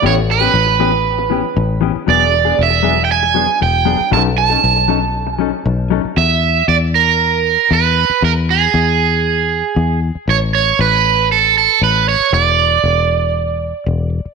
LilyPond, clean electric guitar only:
\new Staff \with { instrumentName = "Clean electric guitar" } { \time 4/4 \key e \mixolydian \tempo 4 = 117 <e b cis' g'>16 r8 <b cis' g'>16 r8 <e b cis' g'>16 r8. <e b cis' g'>16 r8. <e b cis' g'>16 r16 | <fis b d' gis'>16 r8 <b d' gis'>16 r8 <fis b d' gis'>16 r8. <fis b d' gis'>16 r8. <fis b d' gis'>16 r16 | <fis cis' dis' a'>16 r8 <cis' dis' a'>16 r8 <fis cis' dis' a'>16 r8. <fis cis' dis' a'>16 r8. <fis cis' dis' a'>16 r16 | r1 |
r1 | r1 | r1 | }